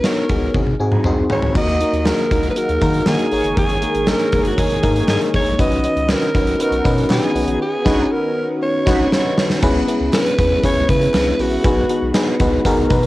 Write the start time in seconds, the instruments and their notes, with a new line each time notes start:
Already playing: fm electric piano B3 D#4 F#4 A#4
0.04 fm electric piano B3 D#4 F#4 C#5, alto saxophone A#4, snare, closed hi-hat
0.29 analog synth bass C#2, fm electric piano B3 D#4 F#4 G#4, kick, closed hi-hat
0.54 analog synth bass G#1, fm electric piano C4 D#4 F#4 G#4, kick, high tom
0.67 analog synth bass G#1, high tom
0.79 analog synth bass G#2, fm electric piano C4 D#4 F#4 G#4 G#5
0.92 mid tom
1.04 analog synth bass C2, fm electric piano C4 D#4 F#4 G#4 C6, mid tom
1.30 analog synth bass C#2, fm electric piano C4 D#4 F#4 G#4, alto saxophone C#5, floor tom
1.42 floor tom
1.55 analog synth bass D#2, string machine D#3 F#3 A#3 F#4, fm electric piano A#3 D#4 F#4 A#4, analog polysynth A#3 D#4 F#4, alto saxophone D#5, kick, crash
1.68 closed hi-hat
1.80 fm electric piano A#3 D#4 F#4 A#4, closed hi-hat
1.93 analog synth bass D#2, closed hi-hat
2.06 fm electric piano A#3 D#4 F#4 G#4, alto saxophone A#4, snare, clap
2.19 closed hi-hat
2.31 analog synth bass C#2, fm electric piano A#3 D#4 F#4 A#4, kick, closed hi-hat
2.43 closed hi-hat
2.50 alto saxophone B4
2.56 fm electric piano A#3 D#4 F#4 A#4, alto saxophone A#4, closed hi-hat
2.69 analog synth bass D#2, closed hi-hat
2.81 analog synth bass D#3, fm electric piano A#3 D#4 F#4 A#4, kick, closed hi-hat
2.94 closed hi-hat
3.06 analog synth bass D#3, fm electric piano A#3 D#4 F#4 A#4, alto saxophone G#4, snare, clap
3.19 closed hi-hat
3.31 analog synth bass G#1, string machine G#3 A#3 G#4, fm electric piano A#3 D#4 G#4 A#4, analog polysynth G#4 A#4 C#5, open hi-hat
3.44 analog synth bass F#1, closed hi-hat
3.57 analog synth bass G#1, alto saxophone G#4, kick, closed hi-hat
3.70 closed hi-hat
3.82 fm electric piano A#3 D#4 G#4 A#4, closed hi-hat
3.95 analog synth bass G#1, closed hi-hat
4.07 fm electric piano A#3 D#4 G#4 A#4, alto saxophone A#4, snare, clap
4.20 closed hi-hat
4.32 analog synth bass F#1, fm electric piano A#3 D#4 G#4 A#4, kick, closed hi-hat
4.43 alto saxophone F#4 G#4, closed hi-hat
4.57 fm electric piano A#3 D#4 G#4 A#4, alto saxophone G#4, kick, closed hi-hat
4.70 analog synth bass G#1, closed hi-hat
4.83 analog synth bass G#2, fm electric piano A#3 D#4 G#4 A#4, kick, closed hi-hat
4.96 closed hi-hat
5.08 analog synth bass G#2, fm electric piano A#3 D#4 G#4 A#4, alto saxophone G#4, snare, clap
5.21 closed hi-hat
5.33 analog synth bass G#1, fm electric piano A#3 D#4 G#4 A#4, alto saxophone C#5, kick, open hi-hat
5.46 analog synth bass A#1, closed hi-hat
5.58 analog synth bass B1, string machine B3 C#4 F#4, fm electric piano C#4 D#4 F#4 B4, alto saxophone D#5, kick, closed hi-hat
5.72 closed hi-hat
5.84 fm electric piano C#4 D#4 F#4 B4, closed hi-hat
5.96 analog synth bass C#2, closed hi-hat
6.09 fm electric piano C#4 D#4 F#4 B4, alto saxophone A#4, snare, clap
6.22 closed hi-hat
6.34 analog synth bass B1, fm electric piano C#4 D#4 F#4 B4, kick, closed hi-hat
6.47 closed hi-hat
6.59 analog polysynth B3 D#4 F#4, fm electric piano C#4 D#4 F#4 B4, alto saxophone A#4, closed hi-hat
6.71 analog synth bass B1, closed hi-hat
6.85 analog synth bass B2, fm electric piano C#4 D#4 F#4 B4, kick, closed hi-hat
6.98 closed hi-hat
7.09 analog synth bass B2, fm electric piano C#4 D#4 F#4 B4, alto saxophone G#4, snare, clap
7.23 closed hi-hat
7.34 analog synth bass B1, fm electric piano C#4 D#4 F#4 B4, open hi-hat
7.47 analog synth bass A#1, closed hi-hat
7.62 alto saxophone G#4
7.85 analog synth bass B1, fm electric piano C#4 D#4 F#4 B4, analog polysynth D#4 F#4 B4, kick, snare, crash
8.12 alto saxophone A#4
8.62 alto saxophone C#5
8.86 analog synth bass B1, fm electric piano C#4 D#4 F#4 B4, analog polysynth D#4 F#4 B4, kick, snare, crash
9.12 alto saxophone C#5, snare
9.38 snare
9.50 snare
9.62 analog synth bass C#2, string machine C#3 G#3 B3 E4, fm electric piano B3 C#4 E4 G#4 B4, kick, crash
9.88 fm electric piano B3 C#4 E4 G#4 B4, closed hi-hat
10.00 analog synth bass C#2
10.13 fm electric piano B3 C#4 E4 G#4 B4, alto saxophone B4, snare, clap, closed hi-hat, tambourine
10.26 closed hi-hat
10.38 analog synth bass E2, fm electric piano B3 C#4 E4 G#4 B4, kick, closed hi-hat
10.64 fm electric piano B3 C#4 E4 G#4 B4, alto saxophone C#5, kick, closed hi-hat
10.77 analog synth bass C#2
10.89 analog synth bass C#3, fm electric piano B3 C#4 E4 G#4 B4, alto saxophone B4, kick, closed hi-hat
11.02 closed hi-hat
11.14 analog synth bass C#2, fm electric piano B3 C#4 E4 G#4 B4, snare, clap, closed hi-hat, tambourine
11.39 analog synth bass A#1, fm electric piano B3 C#4 E4 G#4 B4, alto saxophone F#4, open hi-hat
11.64 analog synth bass B1, string machine D#3 F#4, fm electric piano B3 D#4 F#4 G#4 B4, kick, closed hi-hat
11.89 fm electric piano B3 D#4 F#4 G#4 B4, closed hi-hat
12.02 analog synth bass B1
12.14 fm electric piano B3 D#4 F#4 G#4 B4, snare, clap, closed hi-hat, tambourine
12.40 analog synth bass C#2, fm electric piano B3 D#4 F#4 G#4 B4, kick, closed hi-hat
12.65 fm electric piano B3 D#4 F#4 G#4 A#4, kick, closed hi-hat
12.78 analog synth bass B1
12.90 analog synth bass B2, fm electric piano B3 D#4 F#4 G#4 B4, kick, closed hi-hat
13.03 closed hi-hat